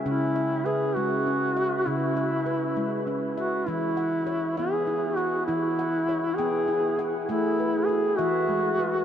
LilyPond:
<<
  \new Staff \with { instrumentName = "Duduk" } { \time 6/8 \key cis \minor \tempo 4. = 66 e'4 gis'8 fis'4. | e'2 r8 fis'8 | e'4. gis'4 fis'8 | e'4. gis'4 r8 |
e'4 gis'8 fis'4. | }
  \new Staff \with { instrumentName = "Handpan" } { \time 6/8 \key cis \minor << { e''8 e''4. r8 e''8~ | e''8 e''4. r8 e''8~ | e''8 fis''4 e''4 fis''8~ | fis''8 fis''4 g''4 fis''8~ |
fis''8 b'4 e''4 b'8 | } \\ { cis'4 b'4 cis'4 | cis'4 b'4 cis'4 | e'4 cis''4 e'4 | e'4 cis''4 e'4 |
gis'4 fis'4 gis4 | } >> }
  \new Staff \with { instrumentName = "Handpan" } { \clef bass \time 6/8 \key cis \minor cis8 r4 gis4. | cis8 r4 gis4. | e8 r4 b4. | e8 r4 b4. |
a8 r4 e4. | }
>>